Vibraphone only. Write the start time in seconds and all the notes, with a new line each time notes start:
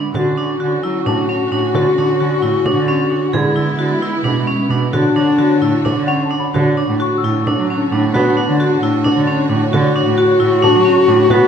0.15 F#4
0.37 D4
0.60 F#4
0.84 E4
1.06 D4
1.29 C#4
1.52 D4
1.75 F#4
1.98 D4
2.20 F#4
2.42 E4
2.66 D4
2.88 C#4
3.10 D4
3.33 G#4
3.56 E4
3.79 F#4
4.02 E4
4.24 D4
4.48 C#4
4.71 D4
4.93 F#4
5.16 D4
5.38 F#4
5.62 E4
5.85 D4
6.08 C#4
6.31 D4
6.54 F#4
6.77 D4
7.00 F#4
7.24 E4
7.47 D4
7.70 C#4
7.92 D4
8.14 F#4
8.37 D4
8.60 F#4
8.83 E4
9.04 D4
9.27 C#4
9.50 D4
9.73 F#4
9.96 D4
10.18 F#4
10.40 E4
10.63 D4
10.85 C#4
11.08 D4
11.31 F#4